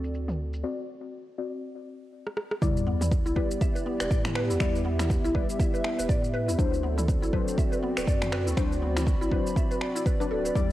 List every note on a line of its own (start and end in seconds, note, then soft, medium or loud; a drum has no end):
0.00 0.64 D2 medium
0.00 0.61 C4 medium
0.00 0.62 C4 medium
0.00 0.61 F#4 medium
0.00 0.62 F#4 medium
0.00 0.62 A4 medium
0.00 0.61 D5 medium
0.00 0.62 D5 medium
0.00 shaker medium
0.14 shaker medium
0.28 mid tom medium
0.28 shaker soft
0.53 shaker medium
0.63 1.35 C4 medium
0.63 1.35 F#4 medium
0.63 1.35 D5 loud
1.38 2.60 C4 medium
1.38 2.59 F#4 medium
1.38 2.60 D5 medium
2.27 cross-stick soft
2.37 cross-stick medium
2.51 cross-stick medium
2.62 3.20 E2 loud
2.62 3.34 G3 loud
2.62 6.55 B3 medium
2.62 2.76 E4 medium
2.62 6.55 E4 medium
2.62 3.34 E4 medium
2.62 6.55 G4 medium
2.62 4.58 D5 medium
2.62 3.34 D5 loud
2.62 kick loud
2.62 sub drop medium
2.62 shaker medium
2.77 shaker soft
2.87 3.00 B3 medium
3.01 3.11 E4 medium
3.01 mid tom medium
3.01 shaker medium
3.12 kick loud
3.12 shaker medium
3.26 3.33 B1 medium
3.26 3.36 E4 loud
3.26 shaker soft
3.36 3.47 B1 medium
3.36 4.58 G3 medium
3.36 4.58 E4 medium
3.36 3.44 B4 loud
3.36 4.58 D5 medium
3.36 kick medium
3.51 shaker medium
3.61 3.74 E5 medium
3.61 kick loud
3.61 shaker medium
3.75 3.81 B4 medium
3.75 shaker soft
3.86 3.99 B3 medium
4.00 4.08 E1 medium
4.00 4.06 B4 medium
4.00 finger snap medium
4.00 shaker medium
4.11 4.52 A2 medium
4.11 4.24 D5 loud
4.11 kick loud
4.11 shaker medium
4.25 finger snap loud
4.25 mid tom loud
4.25 shaker soft
4.35 4.48 B4 loud
4.35 finger snap medium
4.50 4.58 E2 medium
4.50 4.55 E4 medium
4.50 shaker medium
4.60 5.18 E2 loud
4.60 5.32 G3 loud
4.60 5.32 E4 medium
4.60 4.74 E4 medium
4.60 5.32 D5 loud
4.60 6.57 E5 medium
4.60 finger snap medium
4.60 kick loud
4.60 shaker medium
4.75 shaker soft
4.85 4.98 B3 medium
4.99 5.09 E4 medium
4.99 finger snap medium
4.99 mid tom medium
4.99 shaker medium
5.10 kick loud
5.10 shaker medium
5.24 5.32 B1 medium
5.24 5.34 E4 loud
5.24 shaker soft
5.34 5.45 B1 medium
5.34 6.56 G3 medium
5.34 6.56 E4 medium
5.34 5.42 B4 loud
5.34 6.56 D5 medium
5.34 kick medium
5.50 shaker medium
5.59 5.72 E5 medium
5.59 kick loud
5.59 shaker medium
5.74 5.79 B4 medium
5.74 shaker soft
5.84 5.97 B3 medium
5.84 finger snap medium
5.99 6.06 E1 medium
5.99 6.04 B4 medium
5.99 shaker medium
6.09 6.50 A2 medium
6.09 6.22 D5 loud
6.09 kick loud
6.09 shaker medium
6.24 shaker soft
6.34 6.47 B4 loud
6.48 6.56 E2 medium
6.48 6.54 E4 medium
6.48 shaker medium
6.58 7.16 D2 loud
6.58 7.30 F#3 loud
6.58 10.51 C4 medium
6.58 7.30 D4 medium
6.58 6.72 E4 medium
6.58 10.51 F#4 medium
6.58 8.55 A4 medium
6.58 7.30 C5 loud
6.58 10.72 D5 medium
6.58 kick loud
6.58 shaker medium
6.74 shaker soft
6.83 6.96 B3 medium
6.98 7.07 E4 medium
6.98 mid tom medium
6.98 shaker medium
7.08 kick loud
7.08 shaker medium
7.22 7.30 A1 medium
7.22 7.32 E4 loud
7.22 shaker soft
7.33 7.43 A1 medium
7.33 8.54 F#3 medium
7.33 8.55 D4 medium
7.33 7.41 B4 loud
7.33 8.55 C5 medium
7.33 kick medium
7.48 shaker medium
7.58 7.71 E5 medium
7.58 kick loud
7.58 shaker medium
7.72 7.78 B4 medium
7.72 shaker soft
7.83 7.96 B3 medium
7.97 8.05 D1 medium
7.97 8.03 B4 medium
7.97 finger snap loud
7.97 shaker medium
8.07 8.48 F#2 medium
8.07 8.20 D5 loud
8.07 kick loud
8.07 shaker medium
8.22 finger snap loud
8.22 mid tom medium
8.22 shaker soft
8.32 8.45 B4 loud
8.32 finger snap medium
8.47 8.54 D2 medium
8.47 8.52 E4 medium
8.47 shaker medium
8.57 9.15 D2 loud
8.57 9.29 F#3 medium
8.57 9.29 D4 medium
8.57 8.71 E4 medium
8.57 9.29 C5 loud
8.57 10.53 B5 medium
8.57 finger snap medium
8.57 kick loud
8.57 shaker medium
8.72 shaker soft
8.82 8.95 B3 medium
8.96 9.06 E4 medium
8.96 finger snap loud
8.96 mid tom medium
8.96 shaker medium
9.07 kick loud
9.07 shaker medium
9.21 9.29 A1 medium
9.21 9.31 E4 loud
9.21 shaker soft
9.31 9.42 A1 medium
9.31 10.17 F#3 medium
9.31 10.17 D4 medium
9.31 9.39 B4 loud
9.31 10.17 C5 medium
9.31 kick medium
9.47 shaker medium
9.56 9.69 E5 medium
9.56 kick loud
9.56 shaker medium
9.71 9.76 B4 medium
9.71 shaker soft
9.81 finger snap medium
9.96 10.05 E4 loud
9.96 shaker medium
10.06 10.14 B4 medium
10.06 kick loud
10.06 shaker medium
10.20 10.53 F#3 medium
10.20 10.53 D4 medium
10.20 10.30 D4 loud
10.20 10.53 B4 medium
10.20 shaker soft
10.31 10.50 D1 medium
10.31 10.38 A4 medium
10.45 10.51 B4 medium
10.45 shaker medium
10.55 10.72 E2 loud
10.55 10.72 G3 loud
10.55 10.72 B3 medium
10.55 10.69 E4 medium
10.55 10.72 E4 medium
10.55 10.72 G4 medium
10.55 10.72 D5 loud
10.55 kick loud
10.55 shaker medium